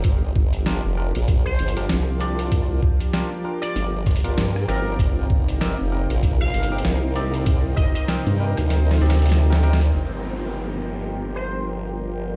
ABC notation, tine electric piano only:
X:1
M:4/4
L:1/16
Q:"Swing 16ths" 1/4=97
K:Gm
V:1 name="Tine electric piano"
z4 [DFGB] z [DFGB] z4 [DFGB] z2 [DFGd]2- | [DFGd]4 [DFGB] z [DFGB] z4 [DFGB] z2 [CEGd]2- | [CEGd]4 [CEGB] z [CEGB] z4 [CEGB] z2 [CEGd]2- | [CEGd]4 [CEGB] z [CEGB] z3 [CEGd]3 [CEGB] [CEGB] z |
z16 |]